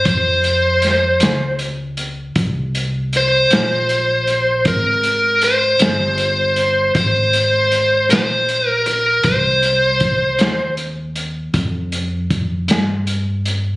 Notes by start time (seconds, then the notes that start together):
0.05 F2 C5, kick, closed hi-hat
0.44 closed hi-hat
0.82 snare, closed hi-hat
1.20 C#2, snare, closed hi-hat
1.59 closed hi-hat
1.97 closed hi-hat
2.36 C2, kick, closed hi-hat
2.75 closed hi-hat
3.13 C5, closed hi-hat
3.50 A#1, snare, closed hi-hat
3.89 closed hi-hat
4.27 closed hi-hat
4.65 G#1 A#4, kick, closed hi-hat
5.03 closed hi-hat
5.41 C5, closed hi-hat
5.79 G1, snare, closed hi-hat
6.18 closed hi-hat
6.56 closed hi-hat
6.95 G#1 C5, kick, closed hi-hat
7.33 closed hi-hat
7.71 closed hi-hat
8.09 A#1 C5, snare, closed hi-hat
8.49 closed hi-hat
8.68 A#4
8.86 A#4, closed hi-hat
9.23 C2 C5, kick, closed hi-hat
9.62 closed hi-hat
10.00 kick, closed hi-hat
10.39 D#2, snare, closed hi-hat
10.77 closed hi-hat
11.16 closed hi-hat
11.53 F2, kick, closed hi-hat
11.92 closed hi-hat
12.30 kick, closed hi-hat
12.68 G2, snare, closed hi-hat
13.07 closed hi-hat
13.45 closed hi-hat